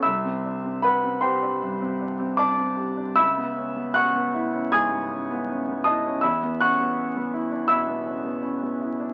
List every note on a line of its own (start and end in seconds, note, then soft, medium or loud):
0.03 1.59 C2 medium
0.03 0.80 E5 medium
0.03 0.80 B5 medium
0.03 0.83 E6 medium
0.25 0.57 C4 medium
0.45 0.65 D4 soft
0.64 0.96 C4 soft
0.82 1.04 D4 soft
0.82 1.21 B4 medium
0.82 1.21 F#5 medium
0.82 1.22 B5 medium
1.04 1.35 C4 medium
1.21 1.54 G4 medium
1.21 2.36 C5 medium
1.21 2.36 G5 medium
1.21 2.39 C6 medium
1.42 1.74 D4 soft
1.62 1.94 G2 medium
1.81 2.13 C4 medium
2.01 2.21 D4 soft
2.20 2.52 C4 medium
2.37 2.60 D4 soft
2.37 3.14 D5 medium
2.37 3.14 A5 medium
2.37 3.17 D6 loud
2.59 2.91 C4 soft
2.77 3.10 G4 soft
2.97 3.18 D4 medium
3.16 4.70 C#2 medium
3.16 3.92 E5 medium
3.16 3.92 B5 medium
3.16 3.96 E6 loud
3.37 3.69 B3 medium
3.57 3.77 C#4 soft
3.76 4.08 B3 medium
3.94 4.16 C#4 soft
3.94 4.70 F#5 medium
3.94 4.70 C#6 medium
3.94 4.73 F#6 loud
4.15 4.47 B3 medium
4.34 4.66 E4 medium
4.53 4.85 C#4 soft
4.72 5.05 G#2 medium
4.72 5.81 G#5 medium
4.72 5.81 D#6 medium
4.72 5.85 G#6 loud
4.92 5.23 B3 soft
5.11 5.30 C#4 soft
5.30 5.60 B3 medium
5.50 5.68 C#4 medium
5.68 5.98 B3 medium
5.84 6.17 E4 medium
5.84 6.21 D#5 medium
5.84 6.21 A5 medium
5.84 6.23 D#6 medium
6.07 6.25 C#4 medium
6.21 7.66 E2 medium
6.21 6.58 E5 medium
6.21 6.59 B5 medium
6.21 6.60 E6 medium
6.43 6.73 B3 medium
6.60 6.81 C#4 soft
6.60 7.66 F#5 medium
6.60 7.66 C#6 medium
6.60 7.69 F#6 loud
6.80 7.09 B3 medium
6.98 7.16 C#4 soft
7.17 7.45 B3 medium
7.34 7.63 E4 medium
7.52 7.80 D4 medium
7.68 7.99 B2 medium
7.68 8.39 E5 medium
7.68 8.39 B5 medium
7.68 8.42 E6 loud
7.87 8.17 B3 soft
8.05 8.24 C#4 soft
8.25 8.55 B3 soft
8.43 8.62 C#4 soft
8.63 8.93 B3 soft
8.82 9.11 E4 soft
9.00 9.13 D4 soft